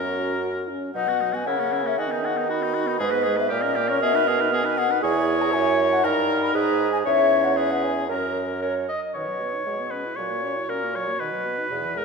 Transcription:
Already playing: bassoon F#2, french horn C#4, clarinet F#4, oboe A#4, flute A#5
0.42 french horn F#4
0.69 french horn C#4
0.95 bassoon B2, french horn F#3, oboe D#4, flute F#5
1.08 french horn B3, oboe F#4
1.21 french horn F#3, oboe D#4
1.32 french horn B3, oboe F#4, flute G#5
1.47 bassoon C#3, french horn C#4, oboe E4, clarinet A#4, flute F#5
1.59 french horn A#3, oboe C#4
1.72 french horn C#4, oboe E4
1.84 french horn A#3, oboe C#4, flute E5
1.97 bassoon D#3, french horn D#4, oboe F#4, clarinet G#4, flute G#5
2.10 french horn B3, oboe D#4
2.23 french horn D#4, oboe F#4, flute F#5
2.36 french horn B3, oboe D#4
2.48 french horn D#4, clarinet F#4, oboe F#4, flute B5
2.61 french horn B3, oboe D#4
2.74 french horn D#4, oboe F#4
2.86 french horn B3, oboe D#4
2.99 bassoon G#2, french horn G#3, oboe G#4, clarinet B4, flute D#5
3.11 french horn B3, oboe B4
3.23 french horn G#3, oboe G#4
3.37 french horn B3, oboe B4, flute E5
3.49 bassoon A#2, french horn A#3, oboe G4, clarinet A#4, flute D#5
3.62 french horn C#4, oboe A#4
3.75 french horn A#3, oboe G4
3.88 french horn C#4, oboe A#4, flute C#5
4.01 bassoon B2, french horn B3, oboe G#4, flute E5
4.14 french horn D#4, oboe B4
4.26 french horn B3, oboe G#4, flute D#5
4.40 french horn D#4, oboe B4
4.52 french horn B3, oboe G#4, flute G#5
4.65 french horn D#4, oboe B4
4.78 french horn B3, oboe G#4, flute F#5
4.91 french horn D#4, oboe B4
5.02 bassoon E2, french horn E4, clarinet G#4, oboe C#5, flute G#5
5.41 flute A#5
5.52 bassoon F#2, clarinet C#5, flute G#5
5.93 flute F#5
6.04 bassoon G2, french horn D#4, clarinet A#4, oboe A#4, flute A#5
6.42 flute B5
6.54 bassoon G#2, clarinet G#4, oboe B4, flute A#5
6.92 flute G#5
7.05 bassoon E2, french horn C#4, clarinet C#5, oboe C#5, flute E5
7.44 flute F#5
7.57 oboe G#4, clarinet B4, flute E5
7.70 flute F#5
7.82 flute G#5
8.09 bassoon F#2, french horn C#4, clarinet A#4, oboe A#4, flute A#5
8.62 flute A#4, oboe A#4, clarinet C#5
8.88 flute D#5, oboe D#5, clarinet D#5
9.14 bassoon B2, french horn D#3, clarinet B4, oboe C#5, flute C#5
9.27 french horn F#3
9.41 french horn B3
9.54 french horn D#4
9.66 bassoon B2, french horn G#3, clarinet G#4
9.80 french horn B3
9.90 french horn C#4, oboe B4, flute B4
10.05 french horn E4
10.16 bassoon A#2, french horn F#3, clarinet F#4, oboe C#5, flute C#5
10.30 french horn A#3
10.44 french horn C#4
10.56 french horn E4
10.69 bassoon A#2, french horn C#4, flute A#4, oboe A#4
10.83 french horn A#3
10.93 french horn F#3, flute C#5, oboe C#5
11.08 french horn A#3
11.20 bassoon B2, french horn D#3, flute B4, oboe B4
11.33 french horn F#3
11.46 french horn B3
11.59 french horn D#4
11.70 bassoon E2, french horn B2, clarinet G#4
11.83 french horn E3
11.95 french horn G#3, flute A#4, oboe A#4

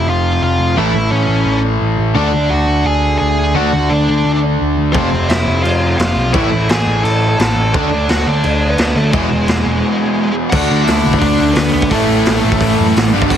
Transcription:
Already playing: distorted electric guitar F2 C3 F3
0.07 picked electric bass F1, lead electric guitar F4 F5
0.42 picked electric bass F1, lead electric guitar F4 F5
0.59 picked electric bass F1
0.77 picked electric bass A1, distorted electric guitar A2 E3 A3 C#4 E4 A4, lead electric guitar E4 E5
0.94 picked electric bass A1
1.11 picked electric bass A1, lead electric guitar C#4 C#5
1.28 picked electric bass A1
1.46 picked electric bass A1
1.82 picked electric bass A1
1.98 picked electric bass A1
2.15 picked electric bass D2, distorted electric guitar D3 A3 D4 F#4 A4, lead electric guitar D4 D5
2.33 picked electric bass D2
2.50 picked electric bass D2, lead electric guitar F#4 F#5
2.67 picked electric bass D2
2.85 picked electric bass D2, lead electric guitar G#4 G#5
3.18 picked electric bass D2, lead electric guitar G#4 G#5
3.39 picked electric bass D2
3.54 picked electric bass D2, distorted electric guitar D3 A3 D4 F#4 A4, lead electric guitar F#4 F#5
3.73 picked electric bass D2
3.90 picked electric bass D2, lead electric guitar D4 D5
4.10 picked electric bass D2
4.25 picked electric bass D2
4.61 picked electric bass D2
4.78 picked electric bass D2
4.93 picked electric bass F1, distorted electric guitar F2 C3 F3 A3 C4 F4 A4, lead electric guitar C4 C5, kick, crash
5.12 picked electric bass F1
5.29 picked electric bass F1, lead electric guitar E4 E5, snare, crash
5.47 picked electric bass F1
5.63 picked electric bass F1, lead electric guitar F4 F5, crash
5.98 picked electric bass F1, lead electric guitar F4 F5, snare, crash
6.17 picked electric bass B1
6.34 picked electric bass A1, distorted electric guitar A2 E3 A3 C#4 E4 A4, lead electric guitar E4 E5, kick, crash
6.52 picked electric bass A1
6.69 picked electric bass A1, lead electric guitar G#4 G#5, snare, crash
6.87 picked electric bass A1
7.04 picked electric bass A1, lead electric guitar A4 A5, crash
7.39 picked electric bass A1, lead electric guitar A4 A5, snare, crash
7.56 picked electric bass A1
7.74 picked electric bass D2, distorted electric guitar D3 A3 D4 F#4 A4, lead electric guitar D4 D5, kick, crash
7.91 picked electric bass D2
8.09 picked electric bass D2, lead electric guitar F#4 F#5, snare, crash
8.27 picked electric bass D2, lead electric guitar D4 D5
8.44 picked electric bass D2, crash
8.71 lead electric guitar B3 B4
8.78 picked electric bass D2, snare, crash
8.95 picked electric bass D2, lead electric guitar A3 A4
9.11 picked electric bass E1, distorted electric guitar E2 B2 E3 G#3 B3 E4 G#4, lead electric guitar G#3 G#4, kick, crash
9.30 picked electric bass E1
9.48 picked electric bass E1, snare, crash
9.66 picked electric bass E1
10.50 picked electric bass D2, distorted electric guitar D3 A3, lead electric guitar F#4 F#5, kick, crash
10.54 distorted electric guitar D4 F#4 A4
10.71 picked electric bass D3
10.84 lead electric guitar E4 E5, snare, open hi-hat
10.89 picked electric bass D2
11.06 picked electric bass B1
11.13 kick
11.19 picked electric bass D2, lead electric guitar D4 D5, kick, open hi-hat
11.40 picked electric bass D2
11.53 picked electric bass D2, lead electric guitar B3 B4, snare, open hi-hat
11.72 picked electric bass D2, lead electric guitar B3 B4
11.82 kick
11.90 picked electric bass A1, distorted electric guitar A2 E3 A3 C#4, lead electric guitar A3 A4, kick, open hi-hat
11.94 distorted electric guitar E4
12.09 picked electric bass A1
12.26 picked electric bass A1, snare, open hi-hat
12.44 picked electric bass A1
12.52 kick
12.61 picked electric bass A1, kick, open hi-hat
12.80 picked electric bass F#2
12.96 picked electric bass A1, snare, open hi-hat
13.13 picked electric bass G1, distorted electric guitar G2 D3 G3 B3 D4
13.22 kick
13.30 picked electric bass G1, lead electric guitar F#4 F#5, kick, crash

